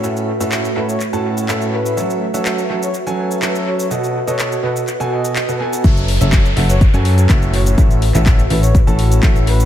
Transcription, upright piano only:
X:1
M:4/4
L:1/16
Q:1/4=124
K:F#dor
V:1 name="Upright piano"
[A,,CFAe]2 z [A,,CFAe]2 z [A,,CFAe] z2 [A,,CFAa]3 [A,,CFAe]4 | [F,CFAe]2 z [F,CFAe]2 z [F,CFAe] z2 [F,CFAg]3 [F,CFAe]4 | [B,,B,FAd]2 z [B,,B,FAd]2 z [B,,B,FAd] z2 [B,,B,FAg]3 z [B,,B,FAd] [B,FAg]2 | [F,CFAe]2 z [F,CFAe]2 z [F,CFAe] z2 [F,CFAg]3 [A,,CFAe]4 |
[A,,CFAe]2 z [A,,CFAe]2 z [A,,CFAe] z2 [A,,CFAa]3 [A,,CFAe]4 |]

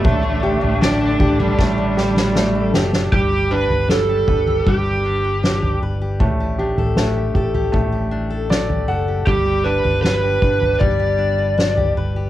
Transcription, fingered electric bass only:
X:1
M:4/4
L:1/16
Q:1/4=78
K:G
V:1 name="Fingered electric bass" clef=bass
A,,,3 A,,,3 A,,,2 A,,,6 F,,,2 | G,,,3 G,,,3 G,,,2 G,,,6 G,,,2 | A,,,3 A,,,3 A,,,2 A,,,6 F,,,2 | G,,,3 G,,,3 G,,,2 G,,,6 G,,,2 |]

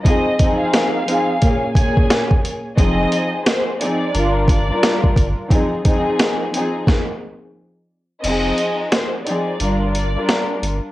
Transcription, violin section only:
X:1
M:4/4
L:1/16
Q:"Swing 16ths" 1/4=88
K:Fm
V:1 name="Violin section"
e3 f6- f a3 z3 | e4 c2 =d4 d3 z3 | z16 | e4 c2 =d4 d3 z3 |]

